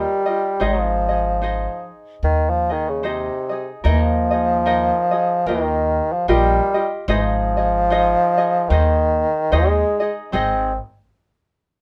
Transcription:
Already playing: G3 F4 G4 A#4 D#5
0.26 F4 G4 D#5
0.60 G#1 D#4 G#4 C5 D#5
0.66 F3
1.08 D#4 G#4 D#5
1.41 D#4 G#4 C5 D#5
2.23 D#2 D#3
2.49 F3
2.69 D#3 D#4 G#4 D#5
2.89 C#3
3.03 C3 D#4 G#4 C5 D#5
3.49 D#4 G#4 D#5
3.84 D#2 D#4 G#4 A#4 D#5
3.88 F3
4.31 D#4 G#4 D#5
4.66 D#4 G#4 A#4 D#5
5.11 D#4 G#4 D#5
5.46 D#2 D#3 F4 G4 A#4 D#5
6.12 F3
6.28 A#1 G3 F4 G4 A#4 D#5
6.74 F4 G4 D#5
7.08 G#1 F3 D#4 G#4 C5 D#5
7.57 D#4 G#4 D#5
7.90 D#4 G#4 C5 D#5
8.37 D#4 G#4 D#5
8.70 D#2 D#3 D#4 G#4 C5 D#5
9.52 D#2 G#3 D#4 G#4 C5 D#5
10.00 D#4 G#4 D#5
10.32 G#1 C4 D#4 G#4 C5 D#5

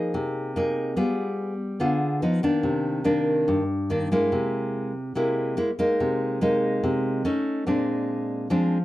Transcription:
Already playing: F3 A#3 D#4 G#4
0.14 C3
0.56 A#3 D#4 G#4
0.97 G3 B3 F4 G#4
1.80 D3 B3 F4 G#4
2.22 F3 B3 D#4
2.43 D#3 A#3 D4
2.63 C3
3.04 D#3 A#3 D4
3.48 G2
3.90 D#3 A#3 D4
4.12 G#3 A#3 E4
4.32 C3
5.15 C3 G#3 A#3 E4
5.57 G#3 A#3 E4
5.79 G#3 A#3 D#4
6.00 C3
6.41 G#3 A#3 D#4
6.83 C3
7.25 A3 C#4 D#4
7.67 A#2 G#3 C4 D4
8.50 F3 G#3 C4 D4

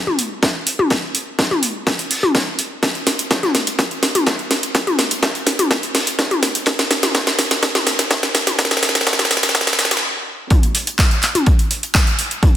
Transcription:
0.07 mid tom
0.18 closed hi-hat, open hi-hat
0.42 kick, snare, closed hi-hat
0.67 closed hi-hat, open hi-hat
0.79 mid tom
0.90 kick, snare, closed hi-hat
1.15 closed hi-hat, open hi-hat
1.39 kick, snare, closed hi-hat
1.51 closed hi-hat, mid tom
1.63 closed hi-hat, open hi-hat
1.87 kick, snare, closed hi-hat
1.99 closed hi-hat, open hi-hat
2.11 open hi-hat
2.23 closed hi-hat, mid tom
2.35 kick, snare, closed hi-hat
2.58 closed hi-hat, open hi-hat
2.82 kick, snare, closed hi-hat
2.95 closed hi-hat
3.07 snare, closed hi-hat, open hi-hat
3.19 closed hi-hat
3.30 kick, snare, closed hi-hat
3.43 snare, closed hi-hat, mid tom
3.55 snare, closed hi-hat, open hi-hat
3.67 closed hi-hat
3.79 kick, snare, closed hi-hat
3.91 closed hi-hat
4.03 snare, closed hi-hat, open hi-hat
4.15 closed hi-hat, mid tom
4.26 kick, snare, closed hi-hat
4.39 closed hi-hat
4.50 snare, closed hi-hat, open hi-hat
4.63 closed hi-hat
4.75 kick, snare, closed hi-hat
4.87 closed hi-hat, mid tom
4.99 snare, closed hi-hat, open hi-hat
5.11 closed hi-hat
5.22 kick, snare, closed hi-hat
5.35 closed hi-hat
5.46 snare, closed hi-hat, open hi-hat
5.59 closed hi-hat, mid tom
5.71 kick, snare, closed hi-hat
5.83 closed hi-hat, open hi-hat
5.95 snare, open hi-hat
6.07 closed hi-hat
6.18 kick, snare, closed hi-hat
6.31 closed hi-hat, mid tom
6.42 snare, closed hi-hat, open hi-hat
6.55 closed hi-hat
6.66 kick, snare, closed hi-hat
6.79 snare, closed hi-hat
6.91 snare, closed hi-hat, open hi-hat
7.03 snare, closed hi-hat, mid tom
7.15 kick, snare, closed hi-hat
7.27 snare, closed hi-hat
7.38 snare, closed hi-hat, open hi-hat
7.51 snare, closed hi-hat
7.63 kick, snare, closed hi-hat
7.75 snare, closed hi-hat, mid tom
7.87 snare, closed hi-hat, open hi-hat
7.99 snare, closed hi-hat
8.10 kick, snare, closed hi-hat
8.23 snare, closed hi-hat
8.35 snare, closed hi-hat, open hi-hat
8.47 snare, closed hi-hat, mid tom
8.59 kick, snare, closed hi-hat
8.65 snare
8.71 snare, closed hi-hat
8.77 snare
8.83 snare, closed hi-hat, open hi-hat
8.89 snare
8.95 snare, closed hi-hat
9.01 snare
9.06 kick, snare, closed hi-hat
9.13 snare
9.19 snare, closed hi-hat, mid tom
9.25 snare
9.31 snare, closed hi-hat, open hi-hat
9.37 snare
9.43 snare, closed hi-hat
9.49 snare
9.55 kick, snare, closed hi-hat
9.61 snare
9.67 snare, open hi-hat
9.73 snare
9.79 snare, closed hi-hat, open hi-hat
9.85 snare
9.91 snare, closed hi-hat, mid tom
9.97 snare
10.50 kick, closed hi-hat, mid tom
10.63 closed hi-hat
10.74 closed hi-hat, open hi-hat
10.87 closed hi-hat
10.98 kick, snare, clap, closed hi-hat
11.11 snare, closed hi-hat
11.22 clap, closed hi-hat, open hi-hat
11.35 closed hi-hat, mid tom
11.46 kick, closed hi-hat
11.59 closed hi-hat
11.71 closed hi-hat, open hi-hat
11.83 closed hi-hat
11.95 kick, snare, clap, closed hi-hat
12.07 closed hi-hat
12.19 closed hi-hat, open hi-hat
12.31 closed hi-hat
12.43 kick, closed hi-hat, mid tom

